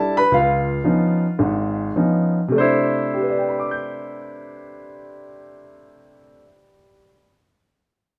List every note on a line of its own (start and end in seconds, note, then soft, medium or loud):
0.00 0.16 G3 soft
0.00 0.17 D4 soft
0.00 0.17 E4 medium
0.00 0.14 A4 medium
0.00 0.16 A5 medium
0.17 0.32 B4 medium
0.17 0.33 B5 medium
0.32 0.78 C#2 medium
0.32 1.94 F4 medium
0.32 1.94 F5 medium
0.84 1.24 F3 soft
0.84 1.24 B3 soft
0.84 1.24 C#4 soft
0.84 1.24 D#4 soft
1.39 1.89 G#1 medium
1.39 1.89 G#2 medium
1.96 2.38 F3 soft
1.96 2.38 B3 soft
1.96 2.38 C#4 soft
1.96 2.38 D#4 soft
2.48 6.36 C3 medium
2.48 6.40 A3 medium
2.56 6.44 D4 medium
2.56 6.42 C5 medium
2.60 6.48 E4 medium
3.14 6.98 G4 soft
3.22 7.06 B4 soft
3.30 7.14 D5 soft
3.39 7.22 G5 soft
3.49 7.33 B5 soft
3.59 7.43 D6 soft
3.71 7.55 G6 soft